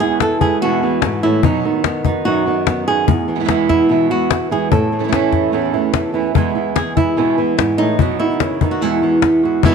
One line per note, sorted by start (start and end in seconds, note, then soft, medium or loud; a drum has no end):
0.00 1.02 E2 medium
0.00 0.82 E3 medium
0.00 0.20 E3 soft
0.00 0.21 G#3 soft
0.00 0.21 B3 soft
0.00 0.20 E4 soft
0.00 0.21 G#4 medium
0.20 0.41 A4 medium
0.20 muted nylon-string guitar stroke soft
0.20 cajon slap medium
0.41 0.62 E3 soft
0.41 0.62 G#3 soft
0.41 0.62 B3 soft
0.41 0.61 E4 soft
0.41 0.62 G#4 medium
0.41 cajon bass medium
0.61 0.82 E2 medium
0.61 0.82 B2 medium
0.61 0.82 E3 medium
0.61 0.82 G#3 medium
0.61 0.82 B3 medium
0.61 0.82 E4 medium
0.61 1.23 F#4 loud
0.82 1.42 E3 medium
0.82 1.03 E3 soft
0.82 1.03 G#3 soft
0.82 1.03 B3 soft
0.82 1.02 E4 soft
0.82 cajon slap soft
1.02 1.24 G#2 medium
1.02 muted nylon-string guitar stroke soft
1.02 cajon slap medium
1.23 1.44 A2 medium
1.23 1.44 E3 soft
1.23 1.44 G#3 soft
1.23 1.44 B3 soft
1.23 1.44 E4 medium
1.23 1.44 E4 soft
1.43 1.64 B2 medium
1.43 1.65 B2 medium
1.43 1.64 F#3 medium
1.43 1.64 B3 medium
1.43 2.04 D#4 medium
1.43 1.65 D#4 medium
1.43 1.64 F#4 medium
1.43 cajon bass medium
1.64 2.46 D#3 medium
1.64 1.84 B3 soft
1.64 1.85 D#4 soft
1.64 1.84 F#4 soft
1.64 cajon slap soft
1.84 2.68 B3 soft
1.84 muted nylon-string guitar stroke soft
1.84 cajon slap medium
2.05 2.25 B3 soft
2.05 2.67 D#4 medium
2.05 2.25 D#4 soft
2.05 2.25 F#4 soft
2.05 cajon bass medium
2.25 3.06 F#2 soft
2.25 2.45 B2 medium
2.25 2.45 F#3 medium
2.25 2.46 B3 medium
2.25 2.46 D#4 medium
2.25 2.87 F#4 medium
2.25 2.45 F#4 medium
2.46 2.87 D#3 soft
2.46 2.67 B3 soft
2.46 2.67 D#4 soft
2.46 2.66 F#4 soft
2.46 cajon slap soft
2.67 3.06 B3 soft
2.67 muted nylon-string guitar stroke medium
2.67 cajon slap medium
2.87 3.06 D#3 soft
2.87 3.08 B3 soft
2.87 3.08 D#4 soft
2.87 3.07 F#4 soft
2.87 3.69 G#4 medium
3.08 4.72 E2 medium
3.08 muted nylon-string guitar stroke medium
3.08 cajon bass medium
3.28 4.10 E3 soft
3.35 3.39 B2 soft
3.35 3.39 E3 soft
3.35 3.39 G#3 soft
3.35 3.39 B3 soft
3.35 3.40 E4 soft
3.40 3.43 B2 soft
3.40 3.44 E3 soft
3.40 3.44 G#3 soft
3.40 3.44 B3 soft
3.40 3.45 E4 soft
3.44 3.48 B2 soft
3.44 3.48 E3 medium
3.44 3.48 G#3 medium
3.44 3.48 B3 medium
3.44 3.49 E4 medium
3.49 3.88 E2 medium
3.49 3.89 B2 medium
3.49 3.89 E3 medium
3.49 3.89 G#3 medium
3.49 3.89 B3 medium
3.49 4.72 B3 soft
3.49 3.90 E4 medium
3.49 cajon slap medium
3.69 4.10 E4 medium
3.69 cajon bass medium
3.69 cajon slap soft
3.89 4.09 E2 medium
3.89 4.10 B2 medium
3.89 4.10 E3 medium
3.89 4.10 G#3 medium
3.89 4.10 B3 medium
3.89 4.09 E4 medium
4.10 4.51 E3 soft
4.10 4.30 E3 soft
4.10 4.30 G#3 soft
4.10 4.31 B3 soft
4.10 4.30 E4 soft
4.10 4.51 F#4 medium
4.31 muted nylon-string guitar stroke soft
4.31 cajon slap medium
4.51 4.92 E3 medium
4.51 4.72 E3 soft
4.51 4.72 G#3 soft
4.51 4.71 B3 soft
4.51 4.71 E4 soft
4.51 4.71 G#4 medium
4.71 5.54 A2 medium
4.71 6.36 A4 medium
4.71 muted nylon-string guitar stroke medium
4.71 cajon bass medium
4.92 5.72 E3 medium
4.99 5.03 E3 soft
4.99 5.03 A3 soft
4.99 5.03 C#4 soft
4.99 5.04 E4 soft
5.04 5.07 E3 soft
5.04 5.07 A3 soft
5.04 5.08 C#4 soft
5.04 5.08 E4 soft
5.08 5.12 E3 soft
5.08 5.12 A3 medium
5.08 5.13 C#4 medium
5.08 5.13 E4 medium
5.13 5.51 A2 medium
5.13 5.51 E3 medium
5.13 5.52 A3 medium
5.13 6.33 C#4 soft
5.13 5.52 C#4 medium
5.13 5.53 E4 medium
5.13 cajon slap medium
5.32 cajon bass medium
5.32 cajon slap soft
5.52 6.34 E2 medium
5.52 5.73 A2 medium
5.52 5.73 E3 medium
5.52 5.73 A3 medium
5.52 5.73 C#4 medium
5.52 5.72 E4 medium
5.73 6.13 E3 medium
5.73 5.93 A3 soft
5.73 5.93 C#4 soft
5.73 5.93 E4 soft
5.73 cajon slap soft
5.94 6.34 A3 soft
5.94 muted nylon-string guitar stroke soft
5.94 cajon slap medium
6.14 6.33 E3 medium
6.14 6.36 A3 soft
6.14 6.35 C#4 soft
6.14 6.35 E4 soft
6.35 7.57 E2 medium
6.35 6.55 E2 medium
6.35 6.55 B2 medium
6.35 6.54 E3 soft
6.35 6.55 E3 medium
6.35 7.98 G#3 soft
6.35 6.56 G#3 medium
6.35 7.78 B3 soft
6.35 6.55 B3 medium
6.35 6.54 E4 medium
6.35 6.74 G#4 soft
6.35 cajon bass medium
6.55 7.37 E3 soft
6.55 6.76 E3 soft
6.55 6.76 G#3 soft
6.55 6.76 B3 soft
6.55 6.75 E4 soft
6.55 cajon slap soft
6.76 6.96 G#4 medium
6.76 muted nylon-string guitar stroke soft
6.76 cajon slap medium
6.97 7.17 E3 soft
6.97 7.17 G#3 soft
6.97 7.17 B3 soft
6.97 7.17 E4 soft
6.97 8.00 E4 medium
6.97 cajon bass medium
7.17 7.37 E2 medium
7.17 7.37 B2 medium
7.17 7.38 B2 medium
7.17 7.38 E3 medium
7.17 7.38 G#3 medium
7.17 7.37 B3 medium
7.17 7.37 E4 medium
7.38 7.97 E3 medium
7.38 7.57 E3 soft
7.38 7.57 G#3 soft
7.38 7.58 B3 soft
7.38 7.58 E4 soft
7.58 7.79 G#2 medium
7.58 muted nylon-string guitar stroke soft
7.58 cajon slap medium
7.78 7.99 A2 medium
7.78 8.00 E3 soft
7.78 7.99 G#3 soft
7.78 7.99 B3 soft
7.78 8.61 D#4 medium
7.78 7.99 E4 soft
7.99 8.20 B2 medium
7.99 8.19 B2 medium
7.99 8.20 F#3 medium
7.99 8.20 B3 medium
7.99 8.20 D#4 medium
7.99 8.19 F#4 medium
7.99 cajon bass medium
8.20 8.61 D#3 soft
8.20 8.40 B3 soft
8.20 8.40 D#4 soft
8.20 8.71 E4 medium
8.20 8.40 F#4 soft
8.20 cajon slap soft
8.40 8.61 C#3 medium
8.40 muted nylon-string guitar stroke soft
8.40 cajon slap medium
8.61 8.82 D#3 medium
8.61 8.82 B3 soft
8.61 8.82 D#4 soft
8.61 8.81 F#4 soft
8.61 cajon bass medium
8.71 8.82 F#4 medium
8.81 9.63 E2 medium
8.81 9.01 E2 medium
8.81 9.02 B2 medium
8.81 9.02 E3 medium
8.81 9.02 G#3 medium
8.81 9.01 B3 medium
8.81 9.43 E4 medium
8.81 9.00 F#4 medium
9.02 9.62 E3 medium
9.02 9.21 E3 soft
9.02 9.22 G#3 soft
9.02 9.22 B3 soft
9.02 9.22 F#4 soft
9.02 cajon slap soft
9.22 9.64 B3 soft
9.22 muted nylon-string guitar stroke medium
9.22 cajon slap medium
9.43 9.64 E3 soft
9.43 9.63 G#3 soft
9.43 9.63 B3 soft
9.43 9.63 F#4 soft
9.43 9.62 F#4 soft
9.63 9.75 E2 medium
9.63 9.75 B2 medium
9.63 9.75 D#3 medium
9.63 9.75 G#3 medium
9.63 9.75 B3 medium
9.63 9.75 E4 loud
9.63 cajon bass loud